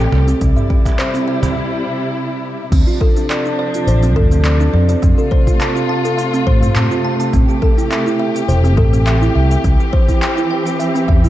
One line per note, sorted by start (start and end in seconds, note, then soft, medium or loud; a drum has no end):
0.00 0.37 C3 medium
0.00 0.39 A3 medium
0.00 0.11 G4 medium
0.00 0.39 G4 loud
0.00 1.57 D5 medium
0.00 cabasa soft
0.12 0.32 C2 medium
0.12 0.27 G4 medium
0.12 cajon slap medium
0.28 0.40 C4 medium
0.28 open hi-hat soft
0.28 cabasa medium
0.41 0.52 C2 medium
0.41 2.70 C3 medium
0.41 2.70 G3 medium
0.41 0.55 C4 medium
0.41 2.70 E4 medium
0.41 kick loud
0.41 open hi-hat medium
0.41 cabasa medium
0.56 0.69 E5 medium
0.56 mid tom medium
0.56 cabasa soft
0.70 0.85 G4 medium
0.70 kick loud
0.85 0.98 E5 medium
0.85 kick medium
0.85 cajon slap medium
0.85 open hi-hat soft
0.85 cabasa medium
0.98 1.13 C5 medium
0.98 clap loud
0.98 open hi-hat medium
0.98 cabasa medium
1.14 1.27 C4 medium
1.14 open hi-hat soft
1.14 cabasa soft
1.28 1.42 E5 medium
1.43 1.55 G4 medium
1.43 cajon bass medium
1.43 open hi-hat soft
1.43 cabasa medium
2.72 2.82 D2 medium
2.72 9.61 C3 medium
2.72 5.01 F3 medium
2.72 2.86 C4 medium
2.72 5.01 D4 medium
2.72 kick loud
2.72 open hi-hat medium
2.72 crash loud
2.72 cabasa medium
2.87 3.00 F4 medium
2.87 cabasa soft
3.01 3.16 A4 medium
3.01 kick loud
3.16 3.29 D4 medium
3.16 open hi-hat soft
3.16 cabasa medium
3.30 3.44 D5 medium
3.30 clap loud
3.30 open hi-hat medium
3.30 cabasa medium
3.46 3.58 D4 medium
3.46 cabasa soft
3.59 3.73 D5 medium
3.74 3.87 F4 medium
3.74 open hi-hat soft
3.74 cabasa medium
3.87 4.16 A1 medium
3.87 4.02 C5 medium
3.87 open hi-hat medium
3.87 cabasa medium
4.03 4.11 C4 medium
4.03 open hi-hat soft
4.03 cabasa soft
4.16 4.67 D2 medium
4.16 4.31 A4 loud
4.16 kick loud
4.16 mid tom medium
4.31 4.44 C4 medium
4.31 open hi-hat soft
4.31 cabasa medium
4.45 4.59 D5 medium
4.45 clap loud
4.45 open hi-hat medium
4.45 cabasa medium
4.60 4.73 D4 medium
4.60 cabasa soft
4.74 4.94 F2 medium
4.74 4.88 D5 medium
4.89 5.01 D5 medium
4.89 open hi-hat soft
4.89 cabasa medium
5.02 5.13 F2 loud
5.02 9.60 A3 medium
5.02 5.16 C4 medium
5.02 7.31 F4 loud
5.02 kick loud
5.02 open hi-hat medium
5.02 cabasa medium
5.18 5.31 A4 medium
5.18 cabasa soft
5.31 5.46 C5 loud
5.31 kick loud
5.47 5.59 F4 medium
5.47 kick medium
5.47 open hi-hat soft
5.47 cabasa medium
5.60 5.74 A5 medium
5.60 clap loud
5.60 open hi-hat medium
5.60 cabasa medium
5.76 5.89 F4 medium
5.76 cabasa soft
5.89 6.04 A5 medium
6.05 6.17 A4 medium
6.05 open hi-hat soft
6.05 cabasa medium
6.18 6.32 F5 medium
6.18 open hi-hat medium
6.18 cabasa medium
6.33 6.41 C4 medium
6.33 open hi-hat soft
6.33 cabasa soft
6.47 6.67 A2 medium
6.47 6.62 C5 loud
6.47 kick loud
6.62 6.75 C4 medium
6.62 mid tom medium
6.62 open hi-hat soft
6.62 cabasa medium
6.76 6.86 A2 medium
6.76 6.90 A5 medium
6.76 clap loud
6.76 open hi-hat medium
6.76 cabasa medium
6.91 7.04 F4 medium
6.91 cabasa soft
7.04 7.19 A5 medium
7.20 7.32 A5 medium
7.20 open hi-hat soft
7.20 cabasa medium
7.33 7.44 A1 medium
7.33 7.47 C4 medium
7.33 11.29 G4 loud
7.33 kick loud
7.33 open hi-hat medium
7.33 cabasa medium
7.49 7.62 G4 medium
7.49 cabasa soft
7.62 7.77 A4 loud
7.62 kick loud
7.77 7.90 E4 medium
7.77 open hi-hat soft
7.77 cabasa medium
7.91 8.05 E5 medium
7.91 clap loud
7.91 open hi-hat medium
7.91 cabasa medium
8.06 8.19 E4 medium
8.06 cabasa soft
8.19 8.34 E5 medium
8.35 8.48 G4 medium
8.35 open hi-hat soft
8.35 cabasa medium
8.48 8.78 E1 medium
8.48 8.63 C5 medium
8.48 open hi-hat medium
8.48 cabasa medium
8.64 8.72 C4 medium
8.64 open hi-hat soft
8.64 cabasa soft
8.77 9.28 A1 loud
8.77 8.92 A4 loud
8.77 kick loud
8.77 mid tom medium
8.93 9.05 C4 medium
8.93 open hi-hat soft
8.93 cabasa medium
9.06 9.20 E5 medium
9.06 clap loud
9.06 open hi-hat medium
9.06 cabasa medium
9.22 9.35 E4 medium
9.22 cabasa soft
9.35 9.55 C2 medium
9.35 9.50 E5 medium
9.51 9.63 E5 medium
9.51 open hi-hat soft
9.51 cabasa medium
9.63 9.75 C2 medium
9.63 11.29 E3 medium
9.63 11.29 C4 medium
9.63 9.78 C4 medium
9.63 kick loud
9.63 open hi-hat medium
9.63 cabasa medium
9.80 9.93 G4 medium
9.80 cabasa soft
9.93 10.08 C5 loud
9.93 kick loud
10.08 10.21 E4 medium
10.08 kick medium
10.08 open hi-hat soft
10.08 cabasa medium
10.22 10.36 G5 medium
10.22 clap loud
10.22 open hi-hat medium
10.22 cabasa medium
10.37 10.50 E4 medium
10.37 cabasa soft
10.50 10.65 G5 medium
10.66 10.79 G4 medium
10.66 open hi-hat soft
10.66 cabasa medium
10.79 10.93 E5 medium
10.79 open hi-hat medium
10.79 cabasa medium
10.95 11.03 C4 medium
10.95 open hi-hat soft
10.95 cabasa soft
11.08 11.29 E2 medium
11.08 11.23 E5 medium
11.08 kick loud
11.24 11.29 E4 medium
11.24 mid tom medium
11.24 open hi-hat soft
11.24 cabasa medium